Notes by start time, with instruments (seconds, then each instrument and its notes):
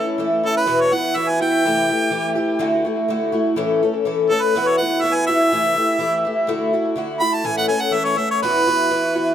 Already playing: twelve-string acoustic guitar A3 C#4 E4, harmonica A4
0.18 twelve-string acoustic guitar E3 A3 C#4 E4
0.43 twelve-string acoustic guitar A3 C#4 E4, harmonica A4
0.57 harmonica B4
0.66 twelve-string acoustic guitar E2 B2 E3 B3 E4 F#4
0.81 harmonica C#5
0.91 twelve-string acoustic guitar E3 B3 E4 F#4, harmonica F#5
1.15 twelve-string acoustic guitar E3 B3 E4 F#4, harmonica E5
1.29 harmonica G#5
1.40 twelve-string acoustic guitar E3 B3 E4 F#4, harmonica G5
1.65 twelve-string acoustic guitar C3 E3 A3 E4 G4
1.89 twelve-string acoustic guitar A3 E4 G4
2.10 twelve-string acoustic guitar E3 A3 E4 G4
2.35 twelve-string acoustic guitar A3 E4 G4
2.59 twelve-string acoustic guitar D3 A3 E4 F#4
2.85 twelve-string acoustic guitar A3 E4 F#4
3.08 twelve-string acoustic guitar D3 A3 E4 F#4
3.32 twelve-string acoustic guitar A3 E4 F#4
3.56 twelve-string acoustic guitar A2 E3 A3 C#4 A4
3.83 twelve-string acoustic guitar A3 C#4 A4
4.05 twelve-string acoustic guitar E3 A3 C#4 A4
4.29 twelve-string acoustic guitar A3 C#4 A4, harmonica A4
4.42 harmonica B4
4.55 twelve-string acoustic guitar E2 B2 E3 B3 E4 F#4
4.68 harmonica C#5
4.78 twelve-string acoustic guitar E4 F#4, harmonica F#5
4.82 twelve-string acoustic guitar E3 B3
5.01 twelve-string acoustic guitar E3 B3 E4 F#4, harmonica E5
5.15 harmonica G#5
5.27 twelve-string acoustic guitar E3 B3 E4 F#4, harmonica E5
5.52 twelve-string acoustic guitar C3 E3 A3 E4 G4
5.75 twelve-string acoustic guitar A3 E4 G4
5.99 twelve-string acoustic guitar E3 A3 E4 G4
6.25 twelve-string acoustic guitar A3 E4 G4
6.47 twelve-string acoustic guitar D3 A3 E4 F#4
6.73 twelve-string acoustic guitar A3 E4 F#4
6.96 twelve-string acoustic guitar D3 A3 E4 F#4
7.20 twelve-string acoustic guitar A3 E4 F#4, harmonica B5
7.34 harmonica A5
7.44 twelve-string acoustic guitar A2 E3 A3 C#4 A4, harmonica G#5
7.58 harmonica F#5
7.68 twelve-string acoustic guitar A3 C#4 A4, harmonica G#5
7.81 harmonica F#5
7.91 twelve-string acoustic guitar E3 A3 C#4 A4, harmonica E5
8.04 harmonica C#5
8.16 twelve-string acoustic guitar A3 C#4 A4, harmonica E5
8.31 harmonica C#5
8.43 twelve-string acoustic guitar E2 B2 E3 B3 E4 F#4, harmonica B4
8.67 twelve-string acoustic guitar E3 B3 E4 F#4
8.90 twelve-string acoustic guitar E3 B3 E4 F#4
9.15 twelve-string acoustic guitar E3 B3 E4 F#4